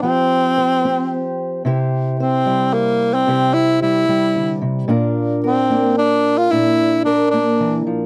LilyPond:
<<
  \new Staff \with { instrumentName = "Steel-string acoustic guitar" } { \time 3/4 \key c \mixolydian \tempo 4 = 111 << { <g' c''>4 c''8 g'4. | <e' g' c''>4 c''8 e'4. | <e' g' c''>4 g8 r4. | <d' f' bes'>4 bes'8 d'4. |
d'4 bes'8 d'4. | } \\ { <f c'>4. c'4. | c4. g4. | c4. g8 d8 c8 | bes,4. bes4. |
bes,4. bes8 e8 f8 | } >> }
  \new Staff \with { instrumentName = "Tenor saxophone" } { \time 3/4 \key c \mixolydian c'2~ c'8 r8 | r4 c'4 bes8. c'16~ | c'8 e'8 e'4. r8 | r4 c'4 d'8. f'16 |
e'4 d'8 d'4 r8 | }
>>